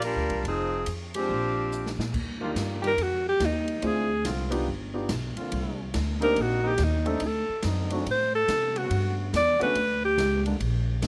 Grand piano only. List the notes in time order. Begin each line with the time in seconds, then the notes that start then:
1.15 G#3 C4 D4 G4
2.41 A#3 D4 D#4 F4 G4
3.82 C4 D4 E4 F4 G#4
4.50 B3 D4 D#4 F4 G4
4.94 B3 D4 D#4 F4 G4
6.21 A#3 C4 D4 D#4 G4
7.05 A3 C4 D4 D#4 A4
7.91 A3 C4 D4 D#4 F#4
9.61 A3 B3 C#4 D4 F#4